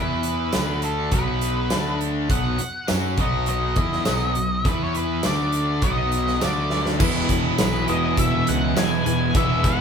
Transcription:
0.00 0.50 E2 medium
0.00 0.53 E3 medium
0.00 0.53 B3 medium
0.00 0.54 E4 medium
0.00 0.85 B4 medium
0.23 closed hi-hat medium
0.53 1.10 D2 medium
0.53 1.12 D3 medium
0.53 1.12 A3 medium
0.53 1.13 D4 medium
0.53 snare medium
0.53 closed hi-hat medium
0.53 tambourine medium
0.82 1.14 A4 medium
0.82 closed hi-hat medium
1.12 1.67 B1 medium
1.12 1.70 B2 medium
1.12 1.71 F#3 medium
1.12 1.71 B3 medium
1.12 1.97 B4 medium
1.12 kick medium
1.12 closed hi-hat medium
1.41 closed hi-hat medium
1.70 2.27 D2 medium
1.70 2.29 D3 medium
1.70 2.29 A3 medium
1.70 2.30 D4 medium
1.70 snare loud
1.70 closed hi-hat medium
1.70 tambourine medium
2.01 closed hi-hat soft
2.29 2.57 B1 medium
2.29 2.58 B2 medium
2.29 2.59 F#3 medium
2.29 2.59 B3 medium
2.29 2.86 F#5 medium
2.29 kick medium
2.29 closed hi-hat medium
2.58 muted overdriven electric guitar stroke soft
2.58 muted picked electric bass stroke soft
2.58 closed hi-hat medium
2.88 3.18 F#2 medium
2.88 3.17 F#3 medium
2.88 3.18 C#4 medium
2.88 3.18 F#4 loud
2.88 snare loud
2.88 closed hi-hat medium
2.88 tambourine loud
3.17 3.74 B1 medium
3.17 3.76 B2 medium
3.17 3.76 F#3 medium
3.17 3.76 B3 medium
3.17 3.48 D#5 medium
3.17 kick medium
3.17 closed hi-hat medium
3.46 4.70 D#5 medium
3.46 closed hi-hat medium
3.76 4.05 E2 medium
3.76 4.05 E3 medium
3.76 4.05 B3 medium
3.76 4.05 E4 medium
3.76 kick medium
3.76 closed hi-hat medium
3.92 snare soft
4.05 4.35 B1 medium
4.05 4.33 B2 medium
4.05 4.34 F#3 medium
4.05 4.35 B3 loud
4.05 snare loud
4.05 closed hi-hat medium
4.05 tambourine medium
4.34 4.64 B1 medium
4.34 4.59 B2 soft
4.34 4.60 F#3 medium
4.34 closed hi-hat soft
4.65 5.21 E2 medium
4.65 5.23 E3 medium
4.65 5.24 B3 medium
4.65 5.24 E4 medium
4.65 kick medium
4.65 closed hi-hat medium
4.69 4.83 B4 medium
4.83 4.97 C#5 medium
4.95 5.24 B4 medium
4.95 closed hi-hat medium
5.23 5.80 D2 medium
5.23 5.82 D3 medium
5.23 5.82 A3 medium
5.23 5.83 D4 medium
5.23 5.83 D5 medium
5.23 snare medium
5.23 closed hi-hat medium
5.23 tambourine loud
5.52 closed hi-hat soft
5.82 6.38 B1 medium
5.82 6.40 B2 medium
5.82 6.41 F#3 medium
5.82 6.41 B3 medium
5.82 6.43 D#5 medium
5.82 kick medium
5.82 closed hi-hat medium
6.12 closed hi-hat medium
6.27 snare soft
6.40 6.98 D2 medium
6.40 6.98 D3 medium
6.40 6.99 A3 medium
6.40 7.00 D4 loud
6.40 6.84 D5 medium
6.40 snare loud
6.40 closed hi-hat medium
6.40 tambourine medium
6.70 snare soft
6.86 snare medium
6.98 7.49 E1 medium
6.98 7.89 E2 medium
6.98 7.86 B2 medium
6.98 7.89 E3 medium
6.98 7.88 G#3 medium
6.98 7.88 B3 medium
6.98 7.24 E4 loud
6.98 7.87 E4 medium
6.98 7.24 G#4 loud
6.98 7.25 B4 loud
6.98 kick loud
6.98 crash loud
7.03 9.35 B2 medium
7.03 9.39 E3 loud
7.29 7.54 E4 medium
7.29 7.54 G#4 medium
7.29 7.54 C#5 loud
7.29 kick medium
7.29 closed hi-hat medium
7.58 7.85 B1 loud
7.58 7.83 E4 medium
7.58 7.83 G#4 medium
7.58 7.83 B4 medium
7.58 7.91 B4 medium
7.58 snare loud
7.58 closed hi-hat medium
7.58 tambourine loud
7.87 8.13 E1 medium
7.87 8.74 E2 medium
7.87 8.75 B2 medium
7.87 8.77 E3 medium
7.87 8.75 G#3 medium
7.87 8.75 B3 medium
7.87 8.78 E4 medium
7.87 8.12 E4 medium
7.87 8.12 G#4 medium
7.87 8.13 B4 loud
7.87 8.19 D#5 medium
7.87 closed hi-hat medium
8.17 8.42 E1 medium
8.17 8.42 E4 medium
8.17 8.41 G#4 medium
8.17 8.42 B4 medium
8.17 8.49 E5 medium
8.17 kick medium
8.17 closed hi-hat loud
8.46 8.73 C#2 medium
8.46 8.71 E4 medium
8.46 8.71 G#4 medium
8.46 8.71 B4 medium
8.46 8.78 F#5 medium
8.46 closed hi-hat medium
8.75 9.02 E1 medium
8.75 9.33 E2 medium
8.75 9.34 B2 medium
8.75 9.35 E3 medium
8.75 9.34 G#3 medium
8.75 9.34 B3 medium
8.75 8.99 E4 medium
8.75 9.36 E4 medium
8.75 9.00 G#4 medium
8.75 9.00 B4 medium
8.75 9.05 G#5 loud
8.75 snare loud
8.75 closed hi-hat medium
8.75 tambourine loud
9.06 9.31 E1 medium
9.06 9.30 E4 loud
9.06 9.30 G#4 medium
9.06 9.30 B4 loud
9.06 9.37 G#5 loud
9.06 closed hi-hat medium
9.35 9.81 E1 loud
9.35 9.81 E2 medium
9.35 9.81 B2 medium
9.35 9.81 E3 medium
9.35 9.81 G#3 medium
9.35 9.81 B3 medium
9.35 9.59 E4 medium
9.35 9.81 E4 medium
9.35 9.59 G#4 medium
9.35 9.60 B4 loud
9.35 9.67 E5 loud
9.35 kick loud
9.35 closed hi-hat medium
9.64 9.81 E4 medium
9.64 9.81 G#4 medium
9.64 9.81 B4 medium
9.64 9.81 F#5 loud
9.64 kick medium
9.64 closed hi-hat medium

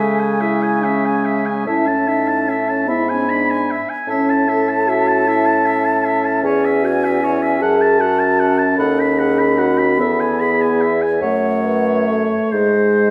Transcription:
0.00 1.66 C#3 soft
0.00 1.68 G#3 soft
0.00 0.43 A4 medium
0.00 0.22 E5 soft
0.00 1.66 G#5 soft
0.20 0.42 G#5 soft
0.41 0.86 E4 medium
0.41 0.64 E5 soft
0.63 0.86 G#5 soft
0.84 1.49 C#4 medium
0.84 1.07 E5 soft
1.05 1.27 G#5 soft
1.26 1.47 E5 soft
1.46 1.66 G#5 soft
1.66 2.90 A2 soft
1.66 2.89 C#4 soft
1.66 1.89 E4 medium
1.66 1.89 E5 soft
1.66 2.90 A5 soft
1.87 2.09 C#4 medium
1.87 2.10 A5 soft
2.08 2.50 D#4 medium
2.08 2.29 E5 soft
2.28 2.51 A5 soft
2.48 2.90 C#4 medium
2.48 2.70 E5 soft
2.69 2.88 A5 soft
2.88 3.81 G#2 medium
2.88 3.81 B3 soft
2.88 3.08 E4 medium
2.88 3.11 E5 soft
2.88 3.81 B5 soft
3.09 3.29 C#4 medium
3.09 3.31 G#5 soft
3.28 3.81 D4 medium
3.28 3.52 B5 soft
3.50 3.73 G#5 soft
3.71 3.91 E5 soft
3.90 4.08 G#5 soft
4.07 6.40 A2 medium
4.07 10.00 C#4 medium
4.07 4.44 C#4 medium
4.07 4.31 E5 soft
4.07 6.40 A5 medium
4.30 4.50 A5 soft
4.49 4.89 A4 medium
4.49 4.71 E5 soft
4.69 4.90 A5 soft
4.88 5.28 F#4 medium
4.88 5.09 E5 soft
5.08 5.29 A5 soft
5.27 5.65 E4 medium
5.27 5.48 E5 medium
5.46 5.68 A5 soft
5.66 5.87 E5 medium
5.85 6.07 A5 soft
6.05 6.27 E5 soft
6.25 6.44 A5 soft
6.43 7.63 E2 medium
6.43 6.85 G#4 medium
6.43 6.67 C#5 medium
6.43 7.63 G#5 soft
6.65 6.87 E5 soft
6.84 7.23 F#4 medium
6.84 7.06 G#5 soft
7.05 7.26 E5 soft
7.22 7.62 E4 medium
7.22 7.44 C#5 soft
7.42 7.62 E5 soft
7.60 8.78 F#2 soft
7.60 8.01 G#4 medium
7.60 7.83 F#5 medium
7.60 8.77 A5 soft
7.81 8.02 A5 soft
7.99 8.78 F#4 medium
7.99 8.21 F#5 medium
8.20 8.41 A5 soft
8.40 8.60 F#5 soft
8.59 8.78 A5 soft
8.78 9.97 D#2 medium
8.78 9.19 A4 medium
8.78 9.02 F#5 soft
8.78 10.95 B5 soft
9.00 9.21 B5 soft
9.18 9.57 G#4 medium
9.18 9.41 F#5 soft
9.39 9.60 B5 soft
9.58 10.01 F#4 medium
9.58 9.80 F#5 soft
9.78 9.99 B5 soft
9.99 11.19 E2 medium
9.99 11.05 B3 soft
9.99 10.42 A4 medium
9.99 10.22 E5 medium
10.20 10.42 G#5 soft
10.40 11.23 G#4 medium
10.40 10.63 B5 soft
10.61 10.83 G#5 soft
10.81 11.03 E5 soft
11.02 11.21 G#5 soft
11.22 12.36 F#2 medium
11.22 12.55 A3 soft
11.22 11.64 C#5 medium
11.22 12.54 C#5 soft
11.22 11.88 F#5 soft
11.64 12.08 B4 medium
11.87 12.55 E5 soft
12.09 12.54 A4 medium
12.52 13.11 G#2 soft
12.52 13.11 G#3 soft
12.52 13.11 G#4 medium
12.52 13.11 C5 soft
12.52 13.11 D#5 soft

